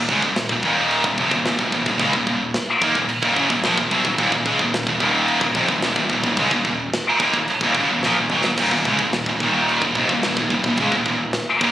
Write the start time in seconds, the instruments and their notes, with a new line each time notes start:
Already playing: distorted electric guitar D#2
0.09 picked electric bass C#2, distorted electric guitar C#3 G#3, kick
0.22 picked electric bass D#1, distorted electric guitar D#2 A#2, kick
0.36 snare, china
0.49 picked electric bass D#1, distorted electric guitar D#2 A#2, kick
0.63 picked electric bass D#1, distorted electric guitar D#2 A#2 D#3, kick
0.91 china
1.04 picked electric bass D#1, distorted electric guitar D#2 A#2, kick
1.18 picked electric bass F1, distorted electric guitar F2 C3, kick
1.31 picked electric bass D#1, distorted electric guitar D#2 A#2, kick
1.45 picked electric bass D#1, distorted electric guitar D#2 A#2, snare, china
1.59 picked electric bass D#1, distorted electric guitar D#2 A#2, kick
1.72 picked electric bass D#1, distorted electric guitar D#2 A#2, kick
1.86 picked electric bass D#1, distorted electric guitar D#2 A#2, kick
1.99 picked electric bass C#2, distorted electric guitar C#3 G#3, kick, china
2.13 picked electric bass D#1, distorted electric guitar D#2 A#2, kick
2.27 picked electric bass D#1, distorted electric guitar D#2 A#2, kick
2.54 snare, china
2.82 picked electric bass D#2, distorted electric guitar D#3 A#3, kick
2.95 picked electric bass D#1, distorted electric guitar D#2 A#2, kick
3.09 muted distorted electric guitar stroke, muted picked electric bass stroke, china
3.22 picked electric bass D#1, distorted electric guitar D#2 A#2, kick
3.36 picked electric bass F#1, distorted electric guitar F#2 C#3, kick
3.50 picked electric bass D#1, distorted electric guitar D#2 A#2, kick
3.63 picked electric bass A#1, distorted electric guitar A#2 F3, snare, china
3.78 picked electric bass D#1, distorted electric guitar D#2 A#2, kick
3.91 picked electric bass B1, distorted electric guitar B2 F#3, kick
4.05 picked electric bass D#1, distorted electric guitar D#2 A#2, kick
4.18 picked electric bass D#1, distorted electric guitar D#2 A#2, kick, china
4.32 picked electric bass D#1, distorted electric guitar D#2 A#2, kick
4.46 picked electric bass C#2, distorted electric guitar C#3 G#3, kick
4.59 picked electric bass D#1, distorted electric guitar D#2 A#2, kick
4.74 snare, china
4.87 picked electric bass D#1, distorted electric guitar D#2 A#2, kick
5.00 picked electric bass D#1, distorted electric guitar D#2 A#2 D#3, kick
5.28 china
5.41 picked electric bass D#1, distorted electric guitar D#2 A#2, kick
5.55 picked electric bass F1, distorted electric guitar F2 C3, kick
5.68 picked electric bass D#1, distorted electric guitar D#2 A#2, kick
5.82 picked electric bass D#1, distorted electric guitar D#2 A#2, snare, china
5.96 picked electric bass D#1, distorted electric guitar D#2 A#2, kick
6.10 picked electric bass D#1, distorted electric guitar D#2 A#2, kick
6.23 picked electric bass D#1, distorted electric guitar D#2 A#2, kick
6.37 picked electric bass C#2, distorted electric guitar C#3 G#3, kick, china
6.51 picked electric bass D#1, distorted electric guitar D#2 A#2, kick
6.65 picked electric bass D#1, distorted electric guitar D#2 A#2, kick
6.93 snare, china
7.20 picked electric bass D#2, distorted electric guitar D#3 A#3, kick
7.33 picked electric bass D#1, distorted electric guitar D#2 A#2, kick
7.48 muted picked electric bass stroke, muted distorted electric guitar stroke, china
7.61 picked electric bass D#1, distorted electric guitar D#2 A#2, kick
7.75 picked electric bass F#1, distorted electric guitar F#2 C#3, kick
7.89 picked electric bass D#1, distorted electric guitar D#2 A#2
8.02 picked electric bass A#1, distorted electric guitar A#2 F3, snare
8.15 picked electric bass D#1
8.20 distorted electric guitar D#2 A#2
8.29 picked electric bass B1, distorted electric guitar B2 F#3, mid tom
8.44 picked electric bass D#1, distorted electric guitar D#2 A#2, snare
8.58 picked electric bass D#1, distorted electric guitar D#2, kick, crash, china
8.62 distorted electric guitar A#2
8.71 picked electric bass D#1, distorted electric guitar D#2 A#2, kick
8.85 picked electric bass C#2, distorted electric guitar C#3 G#3, kick
8.99 picked electric bass D#1, distorted electric guitar D#2 A#2, kick
9.13 snare, china
9.26 picked electric bass D#1, distorted electric guitar D#2 A#2, kick
9.40 picked electric bass D#1, distorted electric guitar D#2 A#2 D#3, kick
9.69 china
9.82 picked electric bass D#1, distorted electric guitar D#2 A#2, kick
9.95 picked electric bass F1, distorted electric guitar F2, kick
9.99 distorted electric guitar C3
10.09 picked electric bass D#1, kick
10.13 distorted electric guitar D#2 A#2
10.23 picked electric bass D#1, snare, china
10.27 distorted electric guitar D#2 A#2
10.37 picked electric bass D#1, distorted electric guitar A#2, kick
10.41 distorted electric guitar D#2
10.50 picked electric bass D#1, distorted electric guitar D#2 A#2, kick
10.64 picked electric bass D#1, kick
10.69 distorted electric guitar D#2 A#2
10.77 picked electric bass C#2, kick, china
10.82 distorted electric guitar C#3 G#3
10.92 picked electric bass D#1, distorted electric guitar D#2, kick
10.96 distorted electric guitar A#2
11.06 picked electric bass D#1, distorted electric guitar D#2, kick
11.10 distorted electric guitar A#2
11.33 snare, china
11.61 picked electric bass D#2, distorted electric guitar D#3 A#3, kick